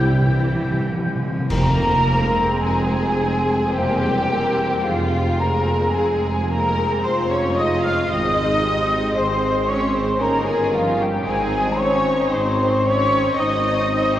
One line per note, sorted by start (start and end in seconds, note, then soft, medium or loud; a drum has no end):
0.00 1.28 C2 medium
0.00 1.16 G2 medium
0.00 0.23 C3 medium
0.00 0.11 C3 medium
0.00 1.12 G3 medium
0.00 1.25 G3 medium
0.00 1.16 C4 medium
0.00 1.11 E4 medium
0.00 1.16 E4 medium
0.00 1.29 E4 medium
0.00 0.85 G4 medium
0.00 0.86 G5 medium
0.00 1.11 G6 medium
0.12 0.20 C3 medium
0.21 0.27 C3 medium
0.27 0.37 C3 medium
0.27 0.89 E3 medium
0.38 0.45 C3 medium
0.46 0.54 C3 medium
0.55 0.62 C3 medium
0.64 0.71 C3 medium
0.72 0.79 C3 medium
0.81 0.88 C3 medium
0.89 0.97 C3 medium
0.89 1.49 F3 medium
0.98 1.05 C3 loud
1.06 1.14 C3 loud
1.16 1.22 C3 loud
1.23 1.29 C3 loud
1.30 1.38 C3 medium
1.39 1.46 C3 loud
1.49 2.50 F1 medium
1.49 2.50 F2 medium
1.49 3.16 F2 loud
1.49 1.94 C3 medium
1.49 2.59 A#3 medium
1.49 1.94 C4 medium
1.49 2.59 A#4 medium
1.49 2.59 A#5 loud
1.49 concert bass drum medium
1.49 crash medium
2.07 3.17 G#3 medium
2.07 3.17 C4 medium
2.62 3.61 F1 medium
2.62 3.61 F2 medium
2.62 3.72 G#3 medium
2.62 3.74 G#4 medium
2.62 3.70 G#4 medium
2.62 3.73 G#4 medium
2.62 3.74 G#5 medium
3.20 3.74 G#3 medium
3.20 3.74 C4 medium
3.73 4.72 E1 medium
3.73 4.71 E2 medium
3.73 4.18 C3 medium
3.73 4.85 G3 medium
3.73 4.18 A#3 medium
3.73 4.29 A#3 medium
3.73 4.29 C4 medium
3.73 4.84 G4 medium
3.73 4.29 C5 medium
3.73 4.82 G5 loud
4.30 4.84 A#3 medium
4.30 4.84 C4 medium
4.30 4.85 A#4 medium
4.84 5.82 F1 medium
4.84 5.82 F2 medium
4.84 5.27 C3 medium
4.84 5.40 F3 medium
4.84 5.27 G#3 medium
4.84 5.40 F4 medium
4.84 5.39 F4 medium
4.84 6.99 G#4 medium
4.84 5.40 F5 loud
5.39 6.47 G#3 medium
5.39 5.95 A#3 medium
5.39 6.47 C4 medium
5.39 5.95 A#4 medium
5.39 5.94 A#5 medium
5.94 6.91 F1 medium
5.94 6.90 F2 medium
5.94 6.49 G#3 medium
5.94 6.49 G#4 medium
5.94 6.49 G#5 medium
6.48 7.54 G#3 medium
6.48 7.02 A#3 medium
6.48 7.54 C4 medium
6.48 7.03 A#4 medium
6.48 7.03 A#5 medium
7.02 7.97 F1 medium
7.02 7.96 F2 medium
7.02 7.30 C4 medium
7.02 7.29 C5 medium
7.02 7.30 C5 medium
7.02 7.30 C6 medium
7.06 8.11 F4 medium
7.29 7.56 C#4 medium
7.29 7.56 C#5 medium
7.29 7.56 C#6 medium
7.56 8.08 G#3 medium
7.56 8.08 C4 medium
7.56 7.83 D#4 medium
7.56 7.83 D#5 medium
7.56 7.82 D#6 medium
7.81 8.09 F4 medium
7.81 8.08 F5 medium
7.81 8.09 F5 medium
7.81 8.09 F6 medium
8.08 9.02 G#1 medium
8.08 9.03 G#1 medium
8.08 8.51 D#3 medium
8.08 8.61 G#3 medium
8.08 8.61 C4 medium
8.08 8.51 C4 medium
8.08 9.15 D#4 medium
8.08 8.63 D#4 medium
8.08 9.14 D#5 medium
8.08 9.13 D#5 medium
8.08 8.90 D#6 loud
8.62 9.66 G#3 medium
8.62 9.66 C4 medium
8.62 9.14 G4 medium
9.13 10.09 G#1 medium
9.13 9.68 C4 medium
9.13 10.22 G#4 medium
9.13 9.66 C5 medium
9.13 9.68 C5 medium
9.13 9.69 C6 medium
9.66 10.21 G#3 medium
9.66 10.21 C4 medium
9.66 9.94 C#4 medium
9.66 9.94 C#5 medium
9.66 9.95 C#6 medium
9.94 10.21 C4 medium
9.94 10.20 C5 medium
9.94 10.21 C5 medium
9.94 10.21 C6 medium
10.20 11.15 G1 medium
10.20 10.62 D#3 medium
10.20 10.49 A#3 medium
10.20 10.62 C#4 medium
10.20 10.73 C#4 medium
10.20 10.73 D#4 medium
10.20 10.48 A#4 medium
10.20 11.11 A#4 medium
10.20 10.48 A#5 medium
10.45 10.75 G#3 medium
10.45 10.73 G#4 medium
10.45 10.75 G#4 medium
10.45 10.74 G#5 medium
10.73 11.01 F3 medium
10.73 11.26 C#4 medium
10.73 11.26 D#4 medium
10.73 11.00 F4 medium
10.73 11.01 F5 medium
11.00 11.27 G3 medium
11.00 11.27 G4 medium
11.00 11.29 G5 medium
11.25 12.19 G#1 medium
11.25 12.20 G#1 medium
11.25 11.68 D#3 medium
11.25 11.80 G#3 medium
11.25 11.68 C4 medium
11.25 11.79 C4 medium
11.25 11.79 D#4 medium
11.25 11.79 G#4 medium
11.25 13.32 C5 medium
11.25 11.80 G#5 medium
11.77 12.82 C4 medium
11.77 12.32 C#4 medium
11.77 12.82 D#4 medium
11.77 12.31 C#5 medium
11.77 12.32 C#6 medium
12.30 13.23 G#1 medium
12.30 13.24 G#1 medium
12.30 12.84 C4 medium
12.30 12.83 C5 medium
12.30 12.84 C6 medium
12.83 13.86 C4 medium
12.83 13.36 C#4 medium
12.83 13.86 D#4 medium
12.83 13.35 C#5 medium
12.83 13.36 C#5 medium
12.83 13.36 C#6 loud
13.35 14.20 G#1 medium
13.35 14.14 D#4 medium
13.35 14.20 C5 medium
13.35 14.11 D#5 medium
13.35 14.14 D#5 medium
13.35 14.14 D#6 loud
13.87 14.20 C4 medium
13.87 14.20 D#4 medium
14.12 14.20 C4 medium
14.12 14.20 C5 medium